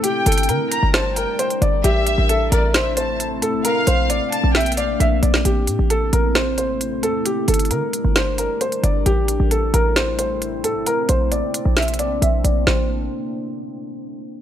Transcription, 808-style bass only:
X:1
M:4/4
L:1/16
Q:1/4=133
K:Aphr
V:1 name="808-style bass" clef=bass
z2 G,,,2 D, z2 G,,,4 z3 G,,,2 | A,,,3 A,,,3 A,,,8 A,, A,,, | z2 B,,,2 A,,, z2 B,,,4- B,,, B,,,2 B,,,2 | A,,,2 A,, A,,,3 A,,,8 E,,2 |
z2 G,,,2 D, z2 G,,,4 z3 G,,,2 | A,,,3 A,,,3 A,,,8 A,, A,,, | z2 B,,,2 A,,, z2 B,,,4- B,,, B,,,2 B,,,2 | A,,,4 z12 |]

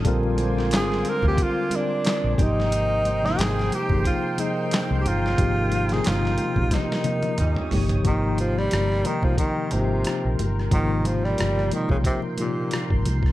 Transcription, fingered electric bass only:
X:1
M:4/4
L:1/16
Q:"Swing 16ths" 1/4=90
K:Ablyd
V:1 name="Fingered electric bass" clef=bass
B,,,4 A,,,2 z D,, z4 z B,,, A,,,2- | A,,,4 A,,,2 z G,,, z4 z C,, G,,,2 | A,,,4 G,,,2 z B,,, z4 E,, z G,,,2 | [K:Ab] A,,,4 G,,,2 z C,, z2 A,,,2 z B,,, G,,,2 |
A,,,4 G,,,2 z C,, z4 z A,,, C,,2 |]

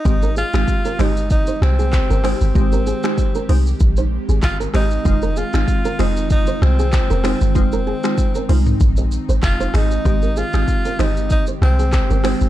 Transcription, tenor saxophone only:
X:1
M:4/4
L:1/8
Q:"Swing 16ths" 1/4=96
K:Ab
V:1 name="Tenor saxophone"
E F2 E E C3 | C4 z2 F E- | E F2 E E C3 | C4 z2 F E- |
E F2 E E C3 |]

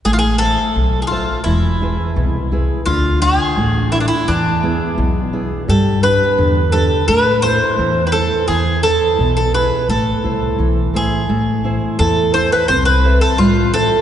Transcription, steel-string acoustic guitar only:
X:1
M:2/4
L:1/8
Q:1/4=86
K:Am
V:1 name="Steel-string acoustic guitar"
A, [Ace]2 [Ace] | E, [E^GB] B,, [EGB] | D, [DF] A, [DFA] | E, [B,E^G] B,, [B,EG] |
G, [DGB] D, [DGB] | A, [EAc] E, [EAc] | E, [EB] B,, [E^GB] | A, [EAc] E, [A,Ec] |
A, [Ec] E, [EAc] | C [Ace] G, [Ace] |]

